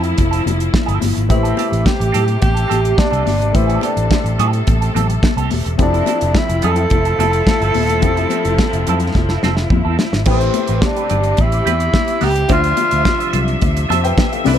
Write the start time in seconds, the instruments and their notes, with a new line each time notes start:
Already playing: fingered electric bass F2, grand piano F3 C4 E4 G4 G#4 A4, string section F3 A3 E4
0.03 muted clean electric guitar stroke, closed hi-hat
0.17 fingered electric bass F1, muted clean electric guitar stroke, kick, closed hi-hat, muted conga
0.31 clean electric guitar C4 E4 A4, closed hi-hat
0.46 fingered electric bass F1, closed hi-hat, muted conga, low conga
0.59 muted clean electric guitar stroke, closed hi-hat
0.73 muted clean electric guitar stroke, kick, snare, high conga
0.86 fingered electric bass G1, clean electric guitar C4 E4 A4, closed hi-hat
1.01 fingered electric bass G1, muted clean electric guitar stroke, snare, open hi-hat, high conga
1.15 fingered electric bass G#1, muted clean electric guitar stroke, closed hi-hat
1.29 fingered electric bass A1, string section C3 G4, grand piano A3 E4 G4 B4 C5, tenor saxophone E4, muted clean electric guitar stroke, kick, closed hi-hat
1.43 clean electric guitar C4 G4 A4, closed hi-hat
1.57 clean electric guitar C4 G4 A4, closed hi-hat, muted conga
1.71 fingered electric bass A1, muted clean electric guitar stroke, closed hi-hat
1.86 tenor saxophone G4, kick, snare, high conga
2.00 fingered electric bass A1, muted clean electric guitar stroke, closed hi-hat
2.12 fingered electric bass A2, clean electric guitar C4 G4 A4, closed hi-hat, low conga
2.26 muted clean electric guitar stroke, closed hi-hat
2.41 fingered electric bass A1, tenor saxophone G4, muted clean electric guitar stroke, kick, closed hi-hat, muted conga
2.54 clean electric guitar C4 G4 A4, closed hi-hat
2.68 fingered electric bass A1, clean electric guitar C4 G4 A4, closed hi-hat, muted conga
2.83 muted clean electric guitar stroke, closed hi-hat
2.97 tenor saxophone D4, muted clean electric guitar stroke, kick, snare, high conga
3.11 fingered electric bass C2, clean electric guitar C4 G4 A4, closed hi-hat
3.25 fingered electric bass G1, muted clean electric guitar stroke, snare, open hi-hat, high conga
3.40 fingered electric bass G#1, muted clean electric guitar stroke, closed hi-hat
3.53 fingered electric bass A1, grand piano A3 E4 G4 B4 C5, tenor saxophone E4, string section A4, muted clean electric guitar stroke, kick, closed hi-hat, muted conga
3.67 clean electric guitar C4 G4 A4, closed hi-hat
3.81 clean electric guitar C4 G4 A4, tenor saxophone D4, closed hi-hat, muted conga
3.96 fingered electric bass A1, muted clean electric guitar stroke, closed hi-hat
4.11 kick, snare, high conga
4.24 fingered electric bass A1, muted clean electric guitar stroke, closed hi-hat
4.38 fingered electric bass A2, clean electric guitar C4 G4 A4, closed hi-hat, low conga
4.53 muted clean electric guitar stroke, closed hi-hat
4.67 fingered electric bass A1, muted clean electric guitar stroke, kick, closed hi-hat, muted conga
4.81 clean electric guitar C4 G4 A4, closed hi-hat
4.95 fingered electric bass A1, clean electric guitar C4 G4 A4, closed hi-hat, muted conga, low conga
5.09 muted clean electric guitar stroke, closed hi-hat
5.23 muted clean electric guitar stroke, kick, snare, high conga
5.37 fingered electric bass C2, clean electric guitar C4 G4 A4, closed hi-hat
5.51 fingered electric bass D#1, muted clean electric guitar stroke, open hi-hat, high conga
5.65 fingered electric bass E1, muted clean electric guitar stroke, closed hi-hat
5.78 fingered electric bass F1, grand piano F3 C4 E4 G4 A4, string section F3 A3 E4, tenor saxophone D4, muted clean electric guitar stroke, kick, closed hi-hat, muted conga
5.93 clean electric guitar C4 E4 A4, closed hi-hat
6.06 clean electric guitar C4 E4 A4, closed hi-hat, muted conga
6.21 fingered electric bass F1, muted clean electric guitar stroke, closed hi-hat
6.35 tenor saxophone E4, kick, snare, high conga
6.49 fingered electric bass F1, muted clean electric guitar stroke, closed hi-hat
6.62 fingered electric bass F2, clean electric guitar C4 E4 A4, tenor saxophone A4, closed hi-hat, low conga
6.76 muted clean electric guitar stroke, closed hi-hat
6.90 fingered electric bass F1, muted clean electric guitar stroke, kick, closed hi-hat, muted conga
7.05 clean electric guitar C4 E4 A4, closed hi-hat
7.19 fingered electric bass F1, clean electric guitar C4 E4 A4, closed hi-hat, muted conga
7.33 muted clean electric guitar stroke, closed hi-hat
7.47 muted clean electric guitar stroke, kick, snare, high conga
7.61 fingered electric bass G1, clean electric guitar C4 E4 A4, closed hi-hat
7.74 fingered electric bass D#1, muted clean electric guitar stroke, open hi-hat, high conga
7.89 fingered electric bass E1, muted clean electric guitar stroke, closed hi-hat
8.02 fingered electric bass F1, grand piano F3 C4 E4 G4 A4, muted clean electric guitar stroke, kick, closed hi-hat
8.17 clean electric guitar C4 E4 A4, closed hi-hat
8.30 clean electric guitar C4 E4 A4, closed hi-hat, muted conga
8.45 fingered electric bass F1, muted clean electric guitar stroke, closed hi-hat
8.59 kick, snare, high conga
8.73 fingered electric bass F1, muted clean electric guitar stroke, closed hi-hat
8.87 fingered electric bass F2, clean electric guitar C4 E4 A4, closed hi-hat, low conga
9.00 closed hi-hat
9.15 fingered electric bass F1, muted clean electric guitar stroke, kick, snare, muted conga
9.29 clean electric guitar C4 E4 A4, snare
9.43 fingered electric bass F1, clean electric guitar C4 E4 A4, snare, muted conga, low conga
9.57 muted clean electric guitar stroke, snare
9.70 fingered electric bass F2, muted clean electric guitar stroke, kick, high conga
9.85 fingered electric bass E2, clean electric guitar C4 E4 A4
9.99 snare, high conga
10.13 fingered electric bass G#1, muted clean electric guitar stroke, snare
10.26 fingered electric bass A1, string section C3 C4 G4, grand piano A3 E4 G4 B4 C5, clean electric guitar C4 G4 B4, kick, crash, muted conga
10.30 tenor saxophone C4
10.40 muted clean electric guitar stroke, closed hi-hat
10.54 muted clean electric guitar stroke, closed hi-hat, muted conga
10.68 fingered electric bass A1, clean electric guitar C4 G4 B4, closed hi-hat
10.82 tenor saxophone D4, kick, snare, high conga
10.96 clean electric guitar C4 G4 B4, closed hi-hat
11.10 fingered electric bass G1, clean electric guitar C4 G4 B4, closed hi-hat, low conga
11.24 closed hi-hat
11.37 fingered electric bass A1, tenor saxophone E4, muted clean electric guitar stroke, kick, closed hi-hat, muted conga
11.52 muted clean electric guitar stroke, closed hi-hat
11.65 fingered electric bass E2, clean electric guitar C4 G4 B4, closed hi-hat, muted conga
11.79 muted clean electric guitar stroke, closed hi-hat
11.94 muted clean electric guitar stroke, kick, snare, high conga
12.08 muted clean electric guitar stroke, closed hi-hat
12.21 fingered electric bass C#2, clean electric guitar C4 G4 B4, tenor saxophone G4, snare, open hi-hat, high conga
12.35 muted clean electric guitar stroke, closed hi-hat
12.48 fingered electric bass D2, string section C3 F3 E5, grand piano D3 D4 F4 C5 E5, clean electric guitar F4 C5 E5, kick, closed hi-hat, muted conga
12.53 tenor saxophone F4
12.64 closed hi-hat
12.77 muted clean electric guitar stroke, closed hi-hat, muted conga
12.91 fingered electric bass D2, clean electric guitar F4 C5 E5, closed hi-hat
13.05 muted clean electric guitar stroke, kick, snare, high conga
13.18 clean electric guitar F4 C5 E5, closed hi-hat
13.33 fingered electric bass C2, clean electric guitar F4 C5 E5, closed hi-hat, low conga
13.47 muted clean electric guitar stroke, closed hi-hat
13.61 fingered electric bass D2, muted clean electric guitar stroke, kick, closed hi-hat, muted conga
13.75 muted clean electric guitar stroke, closed hi-hat
13.89 fingered electric bass F2, clean electric guitar F4 C5 E5, grand piano C5 A5, closed hi-hat, muted conga
14.03 grand piano B4 G5, muted clean electric guitar stroke, closed hi-hat
14.18 muted clean electric guitar stroke, kick, snare, high conga
14.32 grand piano A4 F5, muted clean electric guitar stroke, closed hi-hat
14.44 fingered electric bass C2, grand piano C3 C4 D4 E4 A4, string section D3 B4, clean electric guitar D4 E4 B4, snare, open hi-hat, high conga
14.53 grand piano B4